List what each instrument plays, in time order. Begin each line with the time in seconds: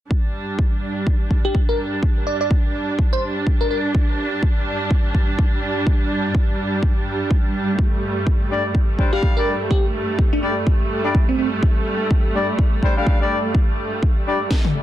0.11 string section G2 G3 D4, kick
0.59 kick
1.07 kick
1.31 kick
1.45 fm electric piano G4
1.55 kick
1.69 fm electric piano A#4
2.03 kick
2.27 fm electric piano D5
2.41 fm electric piano D5
2.51 kick
2.99 kick
3.13 fm electric piano C5
3.47 kick
3.61 fm electric piano A#4
3.71 fm electric piano A#4
3.95 kick
4.43 kick
4.91 kick
5.15 kick
5.39 kick
5.87 kick
6.35 kick
6.83 kick
7.31 kick
7.79 string section A3, kick
8.27 kick
8.51 horn section G3 D4 D5
8.75 kick
8.99 horn section G3 D4 C5, kick
9.13 horn section G3 D4 F5, fm electric piano G4
9.23 kick
9.37 horn section G3 D4 D5, fm electric piano A#4
9.71 fm electric piano G4, kick
10.19 kick
10.33 fm electric piano D4
10.43 horn section G3 D4 D5, fm electric piano D4
10.67 kick
11.05 horn section G3 D4 D5
11.15 kick
11.29 fm electric piano C4
11.39 fm electric piano C4
11.63 kick
12.11 kick
12.35 horn section G3 D4 D5
12.59 kick
12.83 horn section G3 D4 C5, kick
12.97 horn section G3 D4 F5
13.07 kick
13.21 horn section G3 D4 D5
13.55 kick
14.03 kick
14.27 horn section G3 D4 D5
14.51 kick, snare
14.65 high tom